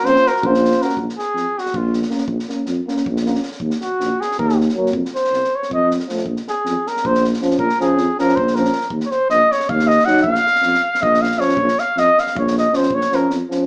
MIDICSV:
0, 0, Header, 1, 7, 480
1, 0, Start_track
1, 0, Key_signature, -5, "minor"
1, 0, Tempo, 379507
1, 1210, Time_signature, 7, 3, 24, 8
1, 17285, End_track
2, 0, Start_track
2, 0, Title_t, "Trumpet"
2, 0, Program_c, 0, 56
2, 69, Note_on_c, 0, 72, 100
2, 350, Note_on_c, 0, 70, 83
2, 369, Note_off_c, 0, 72, 0
2, 583, Note_on_c, 0, 72, 72
2, 602, Note_off_c, 0, 70, 0
2, 1038, Note_on_c, 0, 70, 71
2, 1057, Note_off_c, 0, 72, 0
2, 1232, Note_off_c, 0, 70, 0
2, 1497, Note_on_c, 0, 68, 80
2, 2008, Note_on_c, 0, 66, 72
2, 2027, Note_off_c, 0, 68, 0
2, 2233, Note_on_c, 0, 65, 59
2, 2252, Note_off_c, 0, 66, 0
2, 2466, Note_off_c, 0, 65, 0
2, 4817, Note_on_c, 0, 66, 77
2, 5322, Note_on_c, 0, 68, 84
2, 5341, Note_off_c, 0, 66, 0
2, 5546, Note_off_c, 0, 68, 0
2, 5552, Note_on_c, 0, 70, 67
2, 5783, Note_off_c, 0, 70, 0
2, 6514, Note_on_c, 0, 72, 74
2, 7023, Note_on_c, 0, 73, 69
2, 7042, Note_off_c, 0, 72, 0
2, 7235, Note_off_c, 0, 73, 0
2, 7251, Note_on_c, 0, 75, 74
2, 7471, Note_off_c, 0, 75, 0
2, 8206, Note_on_c, 0, 68, 69
2, 8695, Note_on_c, 0, 70, 77
2, 8714, Note_off_c, 0, 68, 0
2, 8935, Note_on_c, 0, 72, 78
2, 8954, Note_off_c, 0, 70, 0
2, 9169, Note_off_c, 0, 72, 0
2, 9601, Note_on_c, 0, 70, 80
2, 9848, Note_off_c, 0, 70, 0
2, 9882, Note_on_c, 0, 68, 74
2, 10334, Note_off_c, 0, 68, 0
2, 10365, Note_on_c, 0, 70, 81
2, 10570, Note_on_c, 0, 72, 70
2, 10589, Note_off_c, 0, 70, 0
2, 10815, Note_on_c, 0, 70, 76
2, 10834, Note_off_c, 0, 72, 0
2, 11258, Note_off_c, 0, 70, 0
2, 11453, Note_on_c, 0, 73, 60
2, 11527, Note_on_c, 0, 72, 86
2, 11546, Note_off_c, 0, 73, 0
2, 11759, Note_off_c, 0, 72, 0
2, 11767, Note_on_c, 0, 75, 92
2, 12041, Note_on_c, 0, 73, 80
2, 12060, Note_off_c, 0, 75, 0
2, 12261, Note_on_c, 0, 77, 88
2, 12280, Note_off_c, 0, 73, 0
2, 12491, Note_on_c, 0, 75, 89
2, 12509, Note_off_c, 0, 77, 0
2, 12714, Note_on_c, 0, 78, 86
2, 12732, Note_off_c, 0, 75, 0
2, 12924, Note_off_c, 0, 78, 0
2, 12932, Note_on_c, 0, 77, 109
2, 13943, Note_on_c, 0, 75, 87
2, 13962, Note_off_c, 0, 77, 0
2, 14189, Note_on_c, 0, 77, 86
2, 14208, Note_off_c, 0, 75, 0
2, 14415, Note_on_c, 0, 73, 89
2, 14434, Note_off_c, 0, 77, 0
2, 14915, Note_on_c, 0, 77, 87
2, 14934, Note_off_c, 0, 73, 0
2, 15162, Note_on_c, 0, 75, 86
2, 15181, Note_off_c, 0, 77, 0
2, 15429, Note_on_c, 0, 77, 83
2, 15447, Note_off_c, 0, 75, 0
2, 15647, Note_off_c, 0, 77, 0
2, 15663, Note_on_c, 0, 73, 69
2, 15887, Note_off_c, 0, 73, 0
2, 15916, Note_on_c, 0, 75, 79
2, 16139, Note_on_c, 0, 72, 76
2, 16158, Note_off_c, 0, 75, 0
2, 16372, Note_on_c, 0, 73, 89
2, 16391, Note_off_c, 0, 72, 0
2, 16635, Note_on_c, 0, 70, 72
2, 16654, Note_off_c, 0, 73, 0
2, 16845, Note_off_c, 0, 70, 0
2, 17285, End_track
3, 0, Start_track
3, 0, Title_t, "Flugelhorn"
3, 0, Program_c, 1, 56
3, 77, Note_on_c, 1, 65, 63
3, 337, Note_on_c, 1, 66, 68
3, 356, Note_off_c, 1, 65, 0
3, 597, Note_on_c, 1, 65, 81
3, 616, Note_off_c, 1, 66, 0
3, 1061, Note_on_c, 1, 66, 65
3, 1080, Note_off_c, 1, 65, 0
3, 1243, Note_off_c, 1, 66, 0
3, 17285, End_track
4, 0, Start_track
4, 0, Title_t, "Euphonium"
4, 0, Program_c, 2, 58
4, 44, Note_on_c, 2, 61, 68
4, 240, Note_off_c, 2, 61, 0
4, 547, Note_on_c, 2, 61, 57
4, 729, Note_off_c, 2, 61, 0
4, 975, Note_on_c, 2, 61, 58
4, 1174, Note_off_c, 2, 61, 0
4, 2643, Note_on_c, 2, 61, 68
4, 2843, Note_off_c, 2, 61, 0
4, 3143, Note_on_c, 2, 61, 51
4, 3343, Note_off_c, 2, 61, 0
4, 3645, Note_on_c, 2, 61, 63
4, 3835, Note_off_c, 2, 61, 0
4, 4132, Note_on_c, 2, 61, 64
4, 4303, Note_off_c, 2, 61, 0
4, 6016, Note_on_c, 2, 58, 61
4, 6211, Note_off_c, 2, 58, 0
4, 7706, Note_on_c, 2, 57, 51
4, 7899, Note_off_c, 2, 57, 0
4, 9380, Note_on_c, 2, 61, 69
4, 9574, Note_off_c, 2, 61, 0
4, 9866, Note_on_c, 2, 61, 62
4, 10064, Note_off_c, 2, 61, 0
4, 10352, Note_on_c, 2, 61, 66
4, 10543, Note_off_c, 2, 61, 0
4, 10851, Note_on_c, 2, 61, 60
4, 11021, Note_off_c, 2, 61, 0
4, 12732, Note_on_c, 2, 63, 70
4, 12929, Note_off_c, 2, 63, 0
4, 14406, Note_on_c, 2, 61, 53
4, 14606, Note_off_c, 2, 61, 0
4, 16105, Note_on_c, 2, 61, 67
4, 16304, Note_off_c, 2, 61, 0
4, 16584, Note_on_c, 2, 61, 69
4, 16788, Note_off_c, 2, 61, 0
4, 17095, Note_on_c, 2, 61, 59
4, 17285, Note_off_c, 2, 61, 0
4, 17285, End_track
5, 0, Start_track
5, 0, Title_t, "Euphonium"
5, 0, Program_c, 3, 58
5, 59, Note_on_c, 3, 58, 70
5, 252, Note_off_c, 3, 58, 0
5, 534, Note_on_c, 3, 58, 45
5, 719, Note_off_c, 3, 58, 0
5, 1004, Note_on_c, 3, 58, 53
5, 1197, Note_off_c, 3, 58, 0
5, 2637, Note_on_c, 3, 58, 60
5, 2838, Note_off_c, 3, 58, 0
5, 3121, Note_on_c, 3, 58, 49
5, 3326, Note_off_c, 3, 58, 0
5, 3626, Note_on_c, 3, 58, 56
5, 3820, Note_off_c, 3, 58, 0
5, 4109, Note_on_c, 3, 58, 65
5, 4285, Note_off_c, 3, 58, 0
5, 6007, Note_on_c, 3, 54, 68
5, 6204, Note_off_c, 3, 54, 0
5, 7677, Note_on_c, 3, 53, 47
5, 7875, Note_off_c, 3, 53, 0
5, 9377, Note_on_c, 3, 53, 68
5, 9571, Note_off_c, 3, 53, 0
5, 9864, Note_on_c, 3, 53, 64
5, 10062, Note_off_c, 3, 53, 0
5, 10366, Note_on_c, 3, 53, 64
5, 10555, Note_off_c, 3, 53, 0
5, 10840, Note_on_c, 3, 53, 64
5, 11012, Note_off_c, 3, 53, 0
5, 12716, Note_on_c, 3, 54, 67
5, 12917, Note_off_c, 3, 54, 0
5, 14395, Note_on_c, 3, 53, 51
5, 14598, Note_off_c, 3, 53, 0
5, 16078, Note_on_c, 3, 53, 53
5, 16282, Note_off_c, 3, 53, 0
5, 16588, Note_on_c, 3, 53, 59
5, 16791, Note_off_c, 3, 53, 0
5, 17062, Note_on_c, 3, 53, 62
5, 17261, Note_off_c, 3, 53, 0
5, 17285, End_track
6, 0, Start_track
6, 0, Title_t, "Tuba"
6, 0, Program_c, 4, 58
6, 39, Note_on_c, 4, 41, 77
6, 187, Note_off_c, 4, 41, 0
6, 537, Note_on_c, 4, 34, 100
6, 909, Note_off_c, 4, 34, 0
6, 1210, Note_on_c, 4, 34, 78
6, 1360, Note_off_c, 4, 34, 0
6, 1698, Note_on_c, 4, 41, 62
6, 1849, Note_off_c, 4, 41, 0
6, 2193, Note_on_c, 4, 34, 86
6, 2570, Note_off_c, 4, 34, 0
6, 2871, Note_on_c, 4, 34, 77
6, 3023, Note_off_c, 4, 34, 0
6, 3378, Note_on_c, 4, 41, 80
6, 3527, Note_off_c, 4, 41, 0
6, 3875, Note_on_c, 4, 34, 84
6, 4250, Note_off_c, 4, 34, 0
6, 4558, Note_on_c, 4, 39, 84
6, 4707, Note_off_c, 4, 39, 0
6, 5059, Note_on_c, 4, 34, 72
6, 5207, Note_off_c, 4, 34, 0
6, 5545, Note_on_c, 4, 39, 94
6, 5922, Note_off_c, 4, 39, 0
6, 6220, Note_on_c, 4, 41, 84
6, 6373, Note_off_c, 4, 41, 0
6, 6719, Note_on_c, 4, 36, 60
6, 6871, Note_off_c, 4, 36, 0
6, 7218, Note_on_c, 4, 41, 86
6, 7596, Note_off_c, 4, 41, 0
6, 7895, Note_on_c, 4, 34, 70
6, 8049, Note_off_c, 4, 34, 0
6, 8414, Note_on_c, 4, 41, 78
6, 8561, Note_off_c, 4, 41, 0
6, 8906, Note_on_c, 4, 34, 90
6, 9281, Note_off_c, 4, 34, 0
6, 9583, Note_on_c, 4, 34, 79
6, 9734, Note_off_c, 4, 34, 0
6, 10082, Note_on_c, 4, 41, 86
6, 10233, Note_off_c, 4, 41, 0
6, 10580, Note_on_c, 4, 34, 86
6, 10958, Note_off_c, 4, 34, 0
6, 11262, Note_on_c, 4, 39, 75
6, 11414, Note_off_c, 4, 39, 0
6, 11761, Note_on_c, 4, 34, 80
6, 11913, Note_off_c, 4, 34, 0
6, 12259, Note_on_c, 4, 39, 96
6, 12639, Note_off_c, 4, 39, 0
6, 12955, Note_on_c, 4, 34, 89
6, 13105, Note_off_c, 4, 34, 0
6, 13446, Note_on_c, 4, 41, 77
6, 13599, Note_off_c, 4, 41, 0
6, 13933, Note_on_c, 4, 34, 78
6, 14316, Note_off_c, 4, 34, 0
6, 14641, Note_on_c, 4, 34, 93
6, 14792, Note_off_c, 4, 34, 0
6, 15129, Note_on_c, 4, 41, 79
6, 15283, Note_off_c, 4, 41, 0
6, 15623, Note_on_c, 4, 34, 90
6, 16006, Note_off_c, 4, 34, 0
6, 16318, Note_on_c, 4, 34, 74
6, 16472, Note_off_c, 4, 34, 0
6, 16813, Note_on_c, 4, 41, 81
6, 16969, Note_off_c, 4, 41, 0
6, 17285, End_track
7, 0, Start_track
7, 0, Title_t, "Drums"
7, 70, Note_on_c, 9, 38, 28
7, 197, Note_off_c, 9, 38, 0
7, 201, Note_on_c, 9, 38, 21
7, 327, Note_off_c, 9, 38, 0
7, 338, Note_on_c, 9, 38, 25
7, 459, Note_off_c, 9, 38, 0
7, 459, Note_on_c, 9, 38, 20
7, 549, Note_on_c, 9, 36, 86
7, 585, Note_off_c, 9, 38, 0
7, 675, Note_off_c, 9, 36, 0
7, 688, Note_on_c, 9, 38, 26
7, 814, Note_off_c, 9, 38, 0
7, 822, Note_on_c, 9, 38, 25
7, 904, Note_off_c, 9, 38, 0
7, 904, Note_on_c, 9, 38, 22
7, 1030, Note_off_c, 9, 38, 0
7, 1030, Note_on_c, 9, 38, 24
7, 1129, Note_off_c, 9, 38, 0
7, 1129, Note_on_c, 9, 38, 22
7, 1225, Note_on_c, 9, 36, 65
7, 1255, Note_off_c, 9, 38, 0
7, 1352, Note_off_c, 9, 36, 0
7, 1383, Note_on_c, 9, 38, 20
7, 1506, Note_off_c, 9, 38, 0
7, 1506, Note_on_c, 9, 38, 19
7, 1632, Note_off_c, 9, 38, 0
7, 1730, Note_on_c, 9, 38, 20
7, 1856, Note_off_c, 9, 38, 0
7, 2003, Note_on_c, 9, 38, 21
7, 2101, Note_off_c, 9, 38, 0
7, 2101, Note_on_c, 9, 38, 22
7, 2203, Note_on_c, 9, 36, 84
7, 2227, Note_off_c, 9, 38, 0
7, 2329, Note_off_c, 9, 36, 0
7, 2448, Note_on_c, 9, 38, 22
7, 2561, Note_off_c, 9, 38, 0
7, 2561, Note_on_c, 9, 38, 25
7, 2664, Note_off_c, 9, 38, 0
7, 2664, Note_on_c, 9, 38, 26
7, 2758, Note_off_c, 9, 38, 0
7, 2758, Note_on_c, 9, 38, 24
7, 2880, Note_on_c, 9, 36, 71
7, 2884, Note_off_c, 9, 38, 0
7, 3007, Note_off_c, 9, 36, 0
7, 3028, Note_on_c, 9, 38, 22
7, 3155, Note_off_c, 9, 38, 0
7, 3156, Note_on_c, 9, 38, 23
7, 3282, Note_off_c, 9, 38, 0
7, 3365, Note_on_c, 9, 38, 25
7, 3491, Note_off_c, 9, 38, 0
7, 3648, Note_on_c, 9, 38, 24
7, 3754, Note_off_c, 9, 38, 0
7, 3754, Note_on_c, 9, 38, 25
7, 3873, Note_on_c, 9, 36, 75
7, 3881, Note_off_c, 9, 38, 0
7, 4000, Note_off_c, 9, 36, 0
7, 4005, Note_on_c, 9, 38, 29
7, 4128, Note_off_c, 9, 38, 0
7, 4128, Note_on_c, 9, 38, 24
7, 4236, Note_off_c, 9, 38, 0
7, 4236, Note_on_c, 9, 38, 21
7, 4339, Note_off_c, 9, 38, 0
7, 4339, Note_on_c, 9, 38, 27
7, 4450, Note_off_c, 9, 38, 0
7, 4450, Note_on_c, 9, 38, 24
7, 4553, Note_on_c, 9, 36, 69
7, 4577, Note_off_c, 9, 38, 0
7, 4680, Note_off_c, 9, 36, 0
7, 4688, Note_on_c, 9, 38, 24
7, 4814, Note_off_c, 9, 38, 0
7, 4819, Note_on_c, 9, 38, 23
7, 4946, Note_off_c, 9, 38, 0
7, 5064, Note_on_c, 9, 38, 28
7, 5191, Note_off_c, 9, 38, 0
7, 5332, Note_on_c, 9, 38, 25
7, 5458, Note_off_c, 9, 38, 0
7, 5459, Note_on_c, 9, 38, 20
7, 5555, Note_on_c, 9, 36, 86
7, 5585, Note_off_c, 9, 38, 0
7, 5682, Note_off_c, 9, 36, 0
7, 5684, Note_on_c, 9, 38, 26
7, 5810, Note_off_c, 9, 38, 0
7, 5828, Note_on_c, 9, 38, 24
7, 5933, Note_off_c, 9, 38, 0
7, 5933, Note_on_c, 9, 38, 24
7, 6060, Note_off_c, 9, 38, 0
7, 6151, Note_on_c, 9, 38, 21
7, 6240, Note_on_c, 9, 36, 70
7, 6277, Note_off_c, 9, 38, 0
7, 6366, Note_off_c, 9, 36, 0
7, 6392, Note_on_c, 9, 38, 19
7, 6518, Note_off_c, 9, 38, 0
7, 6519, Note_on_c, 9, 38, 20
7, 6634, Note_off_c, 9, 38, 0
7, 6634, Note_on_c, 9, 38, 21
7, 6747, Note_off_c, 9, 38, 0
7, 6747, Note_on_c, 9, 38, 21
7, 6873, Note_off_c, 9, 38, 0
7, 6886, Note_on_c, 9, 38, 20
7, 7012, Note_off_c, 9, 38, 0
7, 7117, Note_on_c, 9, 38, 21
7, 7225, Note_on_c, 9, 36, 75
7, 7244, Note_off_c, 9, 38, 0
7, 7352, Note_off_c, 9, 36, 0
7, 7475, Note_on_c, 9, 38, 22
7, 7586, Note_off_c, 9, 38, 0
7, 7586, Note_on_c, 9, 38, 19
7, 7705, Note_off_c, 9, 38, 0
7, 7705, Note_on_c, 9, 38, 25
7, 7810, Note_off_c, 9, 38, 0
7, 7810, Note_on_c, 9, 38, 20
7, 7913, Note_on_c, 9, 36, 59
7, 7936, Note_off_c, 9, 38, 0
7, 8040, Note_off_c, 9, 36, 0
7, 8051, Note_on_c, 9, 38, 19
7, 8178, Note_off_c, 9, 38, 0
7, 8193, Note_on_c, 9, 38, 22
7, 8320, Note_off_c, 9, 38, 0
7, 8422, Note_on_c, 9, 38, 24
7, 8548, Note_off_c, 9, 38, 0
7, 8687, Note_on_c, 9, 38, 24
7, 8811, Note_off_c, 9, 38, 0
7, 8811, Note_on_c, 9, 38, 24
7, 8916, Note_on_c, 9, 36, 80
7, 8938, Note_off_c, 9, 38, 0
7, 9040, Note_on_c, 9, 38, 26
7, 9042, Note_off_c, 9, 36, 0
7, 9165, Note_off_c, 9, 38, 0
7, 9165, Note_on_c, 9, 38, 29
7, 9279, Note_off_c, 9, 38, 0
7, 9279, Note_on_c, 9, 38, 27
7, 9387, Note_off_c, 9, 38, 0
7, 9387, Note_on_c, 9, 38, 28
7, 9494, Note_off_c, 9, 38, 0
7, 9494, Note_on_c, 9, 38, 24
7, 9599, Note_on_c, 9, 36, 67
7, 9620, Note_off_c, 9, 38, 0
7, 9726, Note_off_c, 9, 36, 0
7, 9733, Note_on_c, 9, 38, 23
7, 9859, Note_off_c, 9, 38, 0
7, 9874, Note_on_c, 9, 38, 22
7, 10001, Note_off_c, 9, 38, 0
7, 10090, Note_on_c, 9, 38, 23
7, 10217, Note_off_c, 9, 38, 0
7, 10357, Note_on_c, 9, 38, 23
7, 10483, Note_off_c, 9, 38, 0
7, 10483, Note_on_c, 9, 38, 20
7, 10590, Note_on_c, 9, 36, 89
7, 10610, Note_off_c, 9, 38, 0
7, 10716, Note_off_c, 9, 36, 0
7, 10719, Note_on_c, 9, 38, 22
7, 10827, Note_off_c, 9, 38, 0
7, 10827, Note_on_c, 9, 38, 22
7, 10940, Note_off_c, 9, 38, 0
7, 10940, Note_on_c, 9, 38, 22
7, 11039, Note_off_c, 9, 38, 0
7, 11039, Note_on_c, 9, 38, 26
7, 11145, Note_off_c, 9, 38, 0
7, 11145, Note_on_c, 9, 38, 19
7, 11261, Note_on_c, 9, 36, 67
7, 11271, Note_off_c, 9, 38, 0
7, 11388, Note_off_c, 9, 36, 0
7, 11389, Note_on_c, 9, 38, 20
7, 11516, Note_off_c, 9, 38, 0
7, 11527, Note_on_c, 9, 38, 19
7, 11653, Note_off_c, 9, 38, 0
7, 11761, Note_on_c, 9, 38, 23
7, 11887, Note_off_c, 9, 38, 0
7, 12037, Note_on_c, 9, 38, 22
7, 12142, Note_off_c, 9, 38, 0
7, 12142, Note_on_c, 9, 38, 24
7, 12259, Note_on_c, 9, 36, 88
7, 12268, Note_off_c, 9, 38, 0
7, 12385, Note_off_c, 9, 36, 0
7, 12390, Note_on_c, 9, 38, 27
7, 12517, Note_off_c, 9, 38, 0
7, 12526, Note_on_c, 9, 38, 30
7, 12643, Note_off_c, 9, 38, 0
7, 12643, Note_on_c, 9, 38, 26
7, 12744, Note_off_c, 9, 38, 0
7, 12744, Note_on_c, 9, 38, 28
7, 12865, Note_off_c, 9, 38, 0
7, 12865, Note_on_c, 9, 38, 22
7, 12952, Note_on_c, 9, 36, 81
7, 12992, Note_off_c, 9, 38, 0
7, 13079, Note_off_c, 9, 36, 0
7, 13089, Note_on_c, 9, 38, 26
7, 13216, Note_off_c, 9, 38, 0
7, 13241, Note_on_c, 9, 38, 25
7, 13350, Note_off_c, 9, 38, 0
7, 13350, Note_on_c, 9, 38, 21
7, 13441, Note_off_c, 9, 38, 0
7, 13441, Note_on_c, 9, 38, 29
7, 13567, Note_off_c, 9, 38, 0
7, 13589, Note_on_c, 9, 38, 28
7, 13716, Note_off_c, 9, 38, 0
7, 13846, Note_on_c, 9, 38, 28
7, 13950, Note_on_c, 9, 36, 94
7, 13973, Note_off_c, 9, 38, 0
7, 14076, Note_off_c, 9, 36, 0
7, 14093, Note_on_c, 9, 38, 27
7, 14211, Note_off_c, 9, 38, 0
7, 14211, Note_on_c, 9, 38, 29
7, 14313, Note_off_c, 9, 38, 0
7, 14313, Note_on_c, 9, 38, 24
7, 14429, Note_off_c, 9, 38, 0
7, 14429, Note_on_c, 9, 38, 30
7, 14531, Note_off_c, 9, 38, 0
7, 14531, Note_on_c, 9, 38, 25
7, 14633, Note_on_c, 9, 36, 79
7, 14658, Note_off_c, 9, 38, 0
7, 14760, Note_off_c, 9, 36, 0
7, 14776, Note_on_c, 9, 38, 25
7, 14902, Note_off_c, 9, 38, 0
7, 14904, Note_on_c, 9, 38, 24
7, 15031, Note_off_c, 9, 38, 0
7, 15145, Note_on_c, 9, 38, 32
7, 15271, Note_off_c, 9, 38, 0
7, 15406, Note_on_c, 9, 38, 26
7, 15518, Note_off_c, 9, 38, 0
7, 15518, Note_on_c, 9, 38, 25
7, 15638, Note_on_c, 9, 36, 102
7, 15645, Note_off_c, 9, 38, 0
7, 15765, Note_off_c, 9, 36, 0
7, 15779, Note_on_c, 9, 38, 30
7, 15904, Note_off_c, 9, 38, 0
7, 15904, Note_on_c, 9, 38, 29
7, 16030, Note_off_c, 9, 38, 0
7, 16108, Note_on_c, 9, 38, 33
7, 16223, Note_off_c, 9, 38, 0
7, 16223, Note_on_c, 9, 38, 23
7, 16323, Note_on_c, 9, 36, 78
7, 16349, Note_off_c, 9, 38, 0
7, 16449, Note_off_c, 9, 36, 0
7, 16458, Note_on_c, 9, 38, 27
7, 16584, Note_off_c, 9, 38, 0
7, 16596, Note_on_c, 9, 38, 29
7, 16723, Note_off_c, 9, 38, 0
7, 16828, Note_on_c, 9, 38, 34
7, 16954, Note_off_c, 9, 38, 0
7, 17092, Note_on_c, 9, 38, 33
7, 17219, Note_off_c, 9, 38, 0
7, 17285, End_track
0, 0, End_of_file